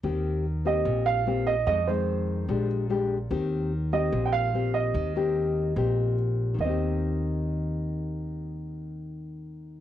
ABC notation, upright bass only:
X:1
M:4/4
L:1/8
Q:1/4=147
K:Eb
V:1 name="Upright bass" clef=bass
E,,4 B,,,4 | F,,4 B,,,4 | E,,4 B,,,4 | E,,4 B,,,4 |
E,,8- | E,,8 |]